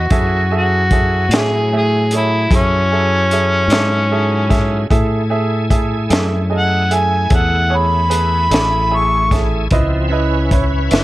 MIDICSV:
0, 0, Header, 1, 6, 480
1, 0, Start_track
1, 0, Tempo, 800000
1, 65, Time_signature, 12, 3, 24, 8
1, 6623, End_track
2, 0, Start_track
2, 0, Title_t, "Upright piano"
2, 0, Program_c, 0, 0
2, 68, Note_on_c, 0, 68, 58
2, 69, Note_on_c, 0, 76, 62
2, 70, Note_on_c, 0, 69, 49
2, 246, Note_off_c, 0, 68, 0
2, 247, Note_off_c, 0, 76, 0
2, 248, Note_off_c, 0, 69, 0
2, 306, Note_on_c, 0, 68, 51
2, 311, Note_on_c, 0, 69, 47
2, 314, Note_on_c, 0, 76, 56
2, 486, Note_off_c, 0, 68, 0
2, 488, Note_off_c, 0, 69, 0
2, 489, Note_off_c, 0, 76, 0
2, 550, Note_on_c, 0, 68, 50
2, 554, Note_on_c, 0, 69, 44
2, 556, Note_on_c, 0, 76, 50
2, 728, Note_off_c, 0, 68, 0
2, 729, Note_off_c, 0, 69, 0
2, 731, Note_off_c, 0, 76, 0
2, 800, Note_on_c, 0, 68, 47
2, 801, Note_on_c, 0, 57, 44
2, 806, Note_on_c, 0, 76, 54
2, 973, Note_off_c, 0, 57, 0
2, 973, Note_off_c, 0, 68, 0
2, 975, Note_off_c, 0, 76, 0
2, 1034, Note_on_c, 0, 68, 47
2, 1037, Note_on_c, 0, 57, 43
2, 1041, Note_on_c, 0, 76, 52
2, 1209, Note_off_c, 0, 68, 0
2, 1211, Note_off_c, 0, 57, 0
2, 1213, Note_off_c, 0, 76, 0
2, 1275, Note_on_c, 0, 68, 47
2, 1277, Note_on_c, 0, 69, 41
2, 1283, Note_on_c, 0, 73, 48
2, 1450, Note_off_c, 0, 68, 0
2, 1451, Note_off_c, 0, 69, 0
2, 1454, Note_off_c, 0, 73, 0
2, 1508, Note_on_c, 0, 68, 43
2, 1514, Note_on_c, 0, 69, 41
2, 1516, Note_on_c, 0, 76, 49
2, 1686, Note_off_c, 0, 68, 0
2, 1689, Note_off_c, 0, 69, 0
2, 1690, Note_off_c, 0, 76, 0
2, 1750, Note_on_c, 0, 68, 46
2, 1753, Note_on_c, 0, 69, 45
2, 1759, Note_on_c, 0, 76, 52
2, 1927, Note_off_c, 0, 68, 0
2, 1929, Note_off_c, 0, 69, 0
2, 1932, Note_off_c, 0, 76, 0
2, 1995, Note_on_c, 0, 69, 49
2, 1996, Note_on_c, 0, 68, 49
2, 2000, Note_on_c, 0, 76, 57
2, 2169, Note_off_c, 0, 69, 0
2, 2170, Note_off_c, 0, 68, 0
2, 2172, Note_off_c, 0, 76, 0
2, 2222, Note_on_c, 0, 68, 56
2, 2230, Note_on_c, 0, 76, 65
2, 2231, Note_on_c, 0, 69, 50
2, 2403, Note_off_c, 0, 68, 0
2, 2407, Note_off_c, 0, 69, 0
2, 2407, Note_off_c, 0, 76, 0
2, 2470, Note_on_c, 0, 68, 57
2, 2470, Note_on_c, 0, 69, 52
2, 2475, Note_on_c, 0, 76, 65
2, 2647, Note_off_c, 0, 68, 0
2, 2647, Note_off_c, 0, 69, 0
2, 2649, Note_off_c, 0, 76, 0
2, 2696, Note_on_c, 0, 68, 57
2, 2701, Note_on_c, 0, 76, 71
2, 2702, Note_on_c, 0, 69, 51
2, 2880, Note_off_c, 0, 68, 0
2, 2883, Note_off_c, 0, 69, 0
2, 2883, Note_off_c, 0, 76, 0
2, 2941, Note_on_c, 0, 68, 68
2, 2946, Note_on_c, 0, 69, 61
2, 2948, Note_on_c, 0, 76, 71
2, 3123, Note_off_c, 0, 68, 0
2, 3125, Note_off_c, 0, 69, 0
2, 3126, Note_off_c, 0, 76, 0
2, 3180, Note_on_c, 0, 68, 67
2, 3182, Note_on_c, 0, 69, 51
2, 3187, Note_on_c, 0, 76, 68
2, 3362, Note_off_c, 0, 68, 0
2, 3363, Note_off_c, 0, 69, 0
2, 3366, Note_off_c, 0, 76, 0
2, 3421, Note_on_c, 0, 68, 60
2, 3422, Note_on_c, 0, 76, 63
2, 3425, Note_on_c, 0, 69, 50
2, 3603, Note_off_c, 0, 68, 0
2, 3603, Note_off_c, 0, 76, 0
2, 3605, Note_off_c, 0, 69, 0
2, 3657, Note_on_c, 0, 68, 49
2, 3659, Note_on_c, 0, 69, 47
2, 3666, Note_on_c, 0, 76, 60
2, 3841, Note_off_c, 0, 68, 0
2, 3842, Note_off_c, 0, 69, 0
2, 3845, Note_off_c, 0, 76, 0
2, 3898, Note_on_c, 0, 68, 52
2, 3903, Note_on_c, 0, 69, 46
2, 3904, Note_on_c, 0, 75, 52
2, 4081, Note_off_c, 0, 68, 0
2, 4084, Note_off_c, 0, 69, 0
2, 4084, Note_off_c, 0, 75, 0
2, 4143, Note_on_c, 0, 68, 50
2, 4146, Note_on_c, 0, 69, 41
2, 4147, Note_on_c, 0, 76, 48
2, 4324, Note_off_c, 0, 68, 0
2, 4325, Note_off_c, 0, 69, 0
2, 4326, Note_off_c, 0, 76, 0
2, 4378, Note_on_c, 0, 68, 50
2, 4379, Note_on_c, 0, 69, 42
2, 4384, Note_on_c, 0, 76, 50
2, 4562, Note_off_c, 0, 68, 0
2, 4562, Note_off_c, 0, 69, 0
2, 4565, Note_off_c, 0, 76, 0
2, 4617, Note_on_c, 0, 68, 49
2, 4620, Note_on_c, 0, 69, 43
2, 4622, Note_on_c, 0, 73, 56
2, 4801, Note_off_c, 0, 68, 0
2, 4803, Note_off_c, 0, 69, 0
2, 4804, Note_off_c, 0, 73, 0
2, 4857, Note_on_c, 0, 68, 51
2, 4860, Note_on_c, 0, 71, 60
2, 4862, Note_on_c, 0, 69, 44
2, 5041, Note_off_c, 0, 68, 0
2, 5043, Note_off_c, 0, 71, 0
2, 5044, Note_off_c, 0, 69, 0
2, 5104, Note_on_c, 0, 68, 50
2, 5104, Note_on_c, 0, 69, 50
2, 5110, Note_on_c, 0, 76, 54
2, 5285, Note_off_c, 0, 68, 0
2, 5285, Note_off_c, 0, 69, 0
2, 5288, Note_off_c, 0, 76, 0
2, 5344, Note_on_c, 0, 68, 52
2, 5348, Note_on_c, 0, 69, 44
2, 5351, Note_on_c, 0, 76, 58
2, 5525, Note_off_c, 0, 68, 0
2, 5527, Note_off_c, 0, 69, 0
2, 5529, Note_off_c, 0, 76, 0
2, 5589, Note_on_c, 0, 68, 52
2, 5592, Note_on_c, 0, 69, 46
2, 5596, Note_on_c, 0, 76, 53
2, 5768, Note_off_c, 0, 68, 0
2, 5769, Note_off_c, 0, 69, 0
2, 5771, Note_off_c, 0, 76, 0
2, 5831, Note_on_c, 0, 64, 67
2, 5832, Note_on_c, 0, 71, 62
2, 5836, Note_on_c, 0, 75, 79
2, 6009, Note_off_c, 0, 64, 0
2, 6010, Note_off_c, 0, 71, 0
2, 6012, Note_off_c, 0, 75, 0
2, 6071, Note_on_c, 0, 64, 61
2, 6074, Note_on_c, 0, 75, 66
2, 6075, Note_on_c, 0, 71, 58
2, 6249, Note_off_c, 0, 64, 0
2, 6251, Note_off_c, 0, 71, 0
2, 6251, Note_off_c, 0, 75, 0
2, 6311, Note_on_c, 0, 64, 60
2, 6315, Note_on_c, 0, 71, 54
2, 6319, Note_on_c, 0, 73, 64
2, 6490, Note_off_c, 0, 64, 0
2, 6492, Note_off_c, 0, 71, 0
2, 6494, Note_off_c, 0, 73, 0
2, 6548, Note_on_c, 0, 71, 49
2, 6549, Note_on_c, 0, 64, 54
2, 6549, Note_on_c, 0, 76, 61
2, 6623, Note_off_c, 0, 64, 0
2, 6623, Note_off_c, 0, 71, 0
2, 6623, Note_off_c, 0, 76, 0
2, 6623, End_track
3, 0, Start_track
3, 0, Title_t, "Harmonica"
3, 0, Program_c, 1, 22
3, 0, Note_on_c, 1, 66, 64
3, 313, Note_off_c, 1, 66, 0
3, 342, Note_on_c, 1, 66, 80
3, 819, Note_on_c, 1, 68, 68
3, 828, Note_off_c, 1, 66, 0
3, 1035, Note_off_c, 1, 68, 0
3, 1059, Note_on_c, 1, 68, 70
3, 1275, Note_off_c, 1, 68, 0
3, 1294, Note_on_c, 1, 64, 76
3, 1533, Note_on_c, 1, 61, 88
3, 1542, Note_off_c, 1, 64, 0
3, 2934, Note_off_c, 1, 61, 0
3, 3938, Note_on_c, 1, 78, 76
3, 4164, Note_on_c, 1, 80, 75
3, 4173, Note_off_c, 1, 78, 0
3, 4410, Note_on_c, 1, 78, 74
3, 4419, Note_off_c, 1, 80, 0
3, 4658, Note_on_c, 1, 83, 83
3, 4667, Note_off_c, 1, 78, 0
3, 5375, Note_on_c, 1, 85, 83
3, 5384, Note_off_c, 1, 83, 0
3, 5594, Note_off_c, 1, 85, 0
3, 6623, End_track
4, 0, Start_track
4, 0, Title_t, "Tonewheel organ"
4, 0, Program_c, 2, 16
4, 72, Note_on_c, 2, 54, 52
4, 72, Note_on_c, 2, 80, 51
4, 74, Note_on_c, 2, 64, 52
4, 2923, Note_off_c, 2, 54, 0
4, 2923, Note_off_c, 2, 80, 0
4, 2924, Note_off_c, 2, 64, 0
4, 2953, Note_on_c, 2, 57, 55
4, 2954, Note_on_c, 2, 80, 51
4, 2956, Note_on_c, 2, 64, 61
4, 5807, Note_off_c, 2, 57, 0
4, 5808, Note_off_c, 2, 80, 0
4, 5809, Note_off_c, 2, 64, 0
4, 5829, Note_on_c, 2, 60, 54
4, 5830, Note_on_c, 2, 53, 52
4, 5834, Note_on_c, 2, 64, 53
4, 6043, Note_off_c, 2, 64, 0
4, 6046, Note_on_c, 2, 61, 63
4, 6048, Note_on_c, 2, 71, 65
4, 6050, Note_on_c, 2, 64, 60
4, 6068, Note_off_c, 2, 60, 0
4, 6069, Note_off_c, 2, 53, 0
4, 6623, Note_off_c, 2, 61, 0
4, 6623, Note_off_c, 2, 64, 0
4, 6623, Note_off_c, 2, 71, 0
4, 6623, End_track
5, 0, Start_track
5, 0, Title_t, "Fingered electric bass"
5, 0, Program_c, 3, 33
5, 64, Note_on_c, 3, 42, 71
5, 763, Note_off_c, 3, 42, 0
5, 774, Note_on_c, 3, 45, 76
5, 1477, Note_off_c, 3, 45, 0
5, 1503, Note_on_c, 3, 42, 74
5, 2202, Note_off_c, 3, 42, 0
5, 2207, Note_on_c, 3, 44, 85
5, 2914, Note_off_c, 3, 44, 0
5, 2944, Note_on_c, 3, 45, 73
5, 3643, Note_off_c, 3, 45, 0
5, 3661, Note_on_c, 3, 42, 76
5, 4361, Note_off_c, 3, 42, 0
5, 4384, Note_on_c, 3, 40, 78
5, 5083, Note_off_c, 3, 40, 0
5, 5104, Note_on_c, 3, 33, 80
5, 5805, Note_off_c, 3, 33, 0
5, 5830, Note_on_c, 3, 37, 70
5, 6528, Note_off_c, 3, 37, 0
5, 6549, Note_on_c, 3, 30, 80
5, 6623, Note_off_c, 3, 30, 0
5, 6623, End_track
6, 0, Start_track
6, 0, Title_t, "Drums"
6, 63, Note_on_c, 9, 42, 70
6, 66, Note_on_c, 9, 36, 81
6, 123, Note_off_c, 9, 42, 0
6, 126, Note_off_c, 9, 36, 0
6, 545, Note_on_c, 9, 36, 74
6, 545, Note_on_c, 9, 42, 59
6, 605, Note_off_c, 9, 36, 0
6, 605, Note_off_c, 9, 42, 0
6, 786, Note_on_c, 9, 42, 83
6, 802, Note_on_c, 9, 38, 102
6, 846, Note_off_c, 9, 42, 0
6, 862, Note_off_c, 9, 38, 0
6, 1265, Note_on_c, 9, 42, 54
6, 1325, Note_off_c, 9, 42, 0
6, 1504, Note_on_c, 9, 36, 102
6, 1507, Note_on_c, 9, 42, 75
6, 1564, Note_off_c, 9, 36, 0
6, 1567, Note_off_c, 9, 42, 0
6, 1987, Note_on_c, 9, 42, 50
6, 2047, Note_off_c, 9, 42, 0
6, 2220, Note_on_c, 9, 42, 74
6, 2236, Note_on_c, 9, 38, 100
6, 2280, Note_off_c, 9, 42, 0
6, 2296, Note_off_c, 9, 38, 0
6, 2703, Note_on_c, 9, 36, 78
6, 2705, Note_on_c, 9, 42, 54
6, 2720, Note_on_c, 9, 38, 31
6, 2763, Note_off_c, 9, 36, 0
6, 2765, Note_off_c, 9, 42, 0
6, 2780, Note_off_c, 9, 38, 0
6, 2943, Note_on_c, 9, 36, 88
6, 2947, Note_on_c, 9, 42, 67
6, 3003, Note_off_c, 9, 36, 0
6, 3007, Note_off_c, 9, 42, 0
6, 3423, Note_on_c, 9, 36, 73
6, 3424, Note_on_c, 9, 42, 56
6, 3483, Note_off_c, 9, 36, 0
6, 3484, Note_off_c, 9, 42, 0
6, 3663, Note_on_c, 9, 42, 77
6, 3678, Note_on_c, 9, 38, 103
6, 3723, Note_off_c, 9, 42, 0
6, 3738, Note_off_c, 9, 38, 0
6, 4147, Note_on_c, 9, 42, 53
6, 4207, Note_off_c, 9, 42, 0
6, 4382, Note_on_c, 9, 42, 76
6, 4384, Note_on_c, 9, 36, 98
6, 4442, Note_off_c, 9, 42, 0
6, 4444, Note_off_c, 9, 36, 0
6, 4866, Note_on_c, 9, 42, 59
6, 4926, Note_off_c, 9, 42, 0
6, 5109, Note_on_c, 9, 42, 77
6, 5124, Note_on_c, 9, 38, 97
6, 5169, Note_off_c, 9, 42, 0
6, 5184, Note_off_c, 9, 38, 0
6, 5588, Note_on_c, 9, 36, 79
6, 5590, Note_on_c, 9, 42, 62
6, 5605, Note_on_c, 9, 38, 31
6, 5648, Note_off_c, 9, 36, 0
6, 5650, Note_off_c, 9, 42, 0
6, 5665, Note_off_c, 9, 38, 0
6, 5824, Note_on_c, 9, 42, 63
6, 5828, Note_on_c, 9, 36, 85
6, 5884, Note_off_c, 9, 42, 0
6, 5888, Note_off_c, 9, 36, 0
6, 6308, Note_on_c, 9, 36, 75
6, 6308, Note_on_c, 9, 42, 59
6, 6367, Note_off_c, 9, 36, 0
6, 6368, Note_off_c, 9, 42, 0
6, 6546, Note_on_c, 9, 42, 76
6, 6561, Note_on_c, 9, 38, 101
6, 6606, Note_off_c, 9, 42, 0
6, 6621, Note_off_c, 9, 38, 0
6, 6623, End_track
0, 0, End_of_file